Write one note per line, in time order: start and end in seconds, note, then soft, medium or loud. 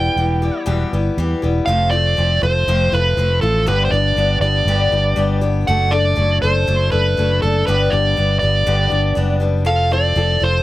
0.00 0.16 E3 soft
0.00 0.17 G3 soft
0.00 0.18 B3 medium
0.00 0.17 G4 medium
0.00 0.63 G5 loud
0.16 0.49 E1 medium
0.16 0.42 E3 medium
0.16 0.42 G3 medium
0.16 0.42 B3 medium
0.16 0.41 G4 medium
0.42 0.65 E3 medium
0.42 0.66 G3 soft
0.42 0.66 B3 medium
0.42 0.65 G4 medium
0.66 0.83 E1 medium
0.66 0.91 E2 medium
0.66 0.91 B2 medium
0.66 0.91 E3 medium
0.66 0.92 G3 medium
0.66 0.92 B3 medium
0.66 0.91 G4 loud
0.93 1.09 G1 medium
0.93 1.17 E3 soft
0.93 1.17 G3 medium
0.93 1.18 B3 medium
0.93 1.17 G4 medium
1.18 1.33 E2 loud
1.18 1.42 E3 medium
1.18 1.42 G3 medium
1.18 1.42 B3 medium
1.18 1.41 G4 medium
1.42 1.59 E1 medium
1.42 1.68 E3 soft
1.42 1.68 G3 medium
1.42 1.67 B3 medium
1.42 1.67 G4 medium
1.66 2.15 F1 medium
1.66 1.92 F2 medium
1.66 1.92 C3 medium
1.66 1.92 F3 medium
1.66 1.92 A3 medium
1.66 1.91 C4 medium
1.66 1.90 F4 medium
1.66 1.89 F5 loud
1.91 2.16 F3 soft
1.91 2.17 A3 soft
1.91 2.17 C4 medium
1.91 2.16 F4 medium
1.91 2.42 D5 loud
2.17 2.41 F1 medium
2.17 2.42 F3 medium
2.17 2.42 A3 medium
2.17 2.42 C4 medium
2.17 2.40 F4 medium
2.42 2.66 F1 medium
2.42 2.67 F3 soft
2.42 2.67 A3 soft
2.42 2.67 C4 medium
2.42 2.66 F4 medium
2.42 2.94 C5 loud
2.68 2.91 F1 medium
2.68 2.92 F2 medium
2.68 2.92 C3 medium
2.68 2.92 F3 medium
2.68 2.92 A3 medium
2.68 2.92 C4 medium
2.68 2.91 F4 medium
2.92 3.16 F1 medium
2.92 3.16 F3 soft
2.92 3.17 A3 soft
2.92 3.17 C4 soft
2.92 3.17 F4 medium
2.92 3.41 B4 medium
3.17 3.41 F1 medium
3.17 3.42 F3 medium
3.17 3.42 A3 medium
3.17 3.42 C4 medium
3.17 3.41 F4 medium
3.41 3.65 A1 loud
3.41 3.67 F3 soft
3.41 3.67 A3 medium
3.41 3.67 C4 medium
3.41 3.67 F4 medium
3.41 3.64 A4 medium
3.66 3.91 G1 medium
3.66 3.91 G2 medium
3.66 3.91 D3 medium
3.66 3.92 G3 medium
3.66 3.92 B3 medium
3.66 3.92 D4 medium
3.66 3.91 G4 medium
3.66 3.84 B4 medium
3.85 3.91 C5 medium
3.91 4.15 G1 loud
3.91 4.16 G3 soft
3.91 4.17 B3 soft
3.91 4.17 D4 medium
3.91 4.17 G4 medium
3.91 4.37 D5 medium
4.16 4.40 G1 medium
4.16 4.41 G3 medium
4.16 4.42 B3 medium
4.16 4.42 D4 medium
4.16 4.41 G4 medium
4.40 4.65 G1 medium
4.40 4.67 G3 soft
4.40 4.67 B3 soft
4.40 4.67 D4 medium
4.40 4.67 G4 medium
4.40 5.37 D5 medium
4.65 4.90 G1 medium
4.65 4.92 G2 medium
4.65 4.92 D3 medium
4.65 4.92 G3 medium
4.65 4.92 B3 medium
4.65 4.91 D4 medium
4.65 4.91 G4 medium
4.91 5.15 G1 medium
4.91 5.15 G3 soft
4.91 5.15 B3 soft
4.91 5.16 D4 medium
4.91 5.16 G4 medium
5.16 5.65 G1 medium
5.16 5.41 G3 medium
5.16 5.41 B3 medium
5.16 5.41 D4 medium
5.16 5.40 G4 medium
5.41 5.67 G3 medium
5.41 5.66 B3 medium
5.41 5.66 D4 medium
5.41 5.66 G4 medium
5.67 6.15 F#1 loud
5.67 5.92 F#3 medium
5.67 5.92 A3 medium
5.67 5.91 D4 medium
5.67 5.90 A4 medium
5.67 5.92 F#5 loud
5.91 6.15 A3 soft
5.91 6.16 D4 medium
5.91 6.16 A4 medium
5.91 6.37 D5 loud
6.16 6.41 F#1 medium
6.16 6.41 F#3 medium
6.16 6.41 A3 medium
6.16 6.41 D4 medium
6.16 6.42 A4 medium
6.42 6.66 F#1 loud
6.42 6.67 A3 soft
6.42 6.67 D4 soft
6.42 6.67 A4 medium
6.42 6.91 C5 loud
6.67 6.91 F#1 loud
6.67 6.91 F#3 medium
6.67 6.92 A3 medium
6.67 6.91 D4 medium
6.67 6.90 A4 medium
6.91 7.16 F#1 medium
6.91 7.16 A3 medium
6.91 7.16 D4 medium
6.91 7.16 A4 soft
6.91 7.42 B4 medium
7.17 7.41 F#1 medium
7.17 7.41 F#3 medium
7.17 7.42 A3 medium
7.17 7.42 D4 medium
7.17 7.41 A4 medium
7.42 7.66 F#1 loud
7.42 7.67 A3 medium
7.42 7.67 D4 medium
7.42 7.66 A4 medium
7.67 7.91 G1 medium
7.67 7.92 G2 medium
7.67 7.92 D3 medium
7.67 7.92 G3 medium
7.67 7.92 B3 medium
7.67 7.92 D4 medium
7.67 7.91 G4 medium
7.67 7.92 B4 medium
7.90 8.16 G1 loud
7.90 8.15 G3 soft
7.90 8.16 B3 soft
7.90 8.17 D4 medium
7.90 8.16 G4 medium
7.90 8.38 D5 medium
8.17 8.41 G1 medium
8.17 8.41 G3 medium
8.17 8.41 B3 medium
8.17 8.41 D4 medium
8.17 8.40 G4 medium
8.39 8.66 G1 medium
8.39 8.66 D4 medium
8.39 8.66 G4 medium
8.39 9.36 D5 medium
8.44 8.66 G3 soft
8.44 8.66 B3 soft
8.66 8.90 G1 loud
8.66 8.91 G2 medium
8.66 8.91 D3 medium
8.66 8.91 G3 medium
8.66 8.90 B3 medium
8.66 8.90 D4 medium
8.66 8.89 G4 medium
8.90 9.15 G1 medium
8.90 9.14 G3 soft
8.90 9.15 B3 soft
8.90 9.16 D4 medium
8.90 9.15 G4 medium
9.15 9.66 F#1 medium
9.15 9.40 G3 medium
9.15 9.40 B3 medium
9.15 9.39 D4 medium
9.15 9.39 G4 medium
9.40 9.64 G3 medium
9.40 9.64 B3 medium
9.40 9.66 D4 medium
9.40 9.65 G4 medium
9.65 10.14 F1 loud
9.65 9.90 F3 medium
9.65 9.90 C4 medium
9.65 9.91 F4 medium
9.65 9.90 A4 medium
9.65 9.92 F5 loud
9.91 10.15 C4 soft
9.91 10.16 F4 medium
9.91 10.16 A4 medium
9.91 10.43 D5 medium
10.16 10.40 F1 medium
10.16 10.41 F3 medium
10.16 10.41 C4 medium
10.16 10.41 F4 medium
10.16 10.39 A4 medium
10.40 10.63 F1 medium
10.40 10.63 C4 soft
10.40 10.63 F4 soft
10.40 10.63 A4 medium
10.40 10.63 C5 loud